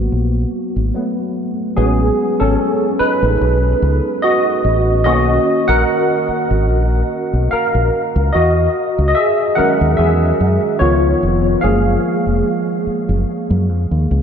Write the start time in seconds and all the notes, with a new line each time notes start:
Already playing: F#3 A#3 B3 F#4
0.12 A#1
0.76 G#1
0.94 F#3 A3 B3
1.76 A1 F#3 G#3 B3 C#4 G#4
2.40 G#1 C#4 A4
2.99 D#4 B4, muted fingered electric bass stroke
3.23 A1
3.41 B1
3.82 C#2
4.22 F#4 D#5
4.65 A1
5.04 B1 D#3 A#3 C#4 F#4 D#5
5.68 A#1 A#4 F#5
6.29 muted fingered electric bass stroke
6.51 G#1
6.70 A#1
7.33 B1
7.51 A#4 F5, muted fingered electric bass stroke
7.75 A#1
8.16 C#2
8.33 E2 F#4 D#5
8.98 C#2
9.08 D#5
9.15 G#4 E5
9.55 D#3 F#3 G#3 C#4 A#4 F#5, muted fingered electric bass stroke
9.81 D#2
9.97 E2 G#4 E5
10.40 F#2
10.79 C#2 D#3 F3 B3 F4 C#5
11.23 F1
11.61 F#1 F3 G#3 A#3 G#4 F5
12.27 F1
12.87 muted fingered electric bass stroke
13.09 F#1
13.50 F#2
13.69 F2
13.91 D#2
14.11 C#2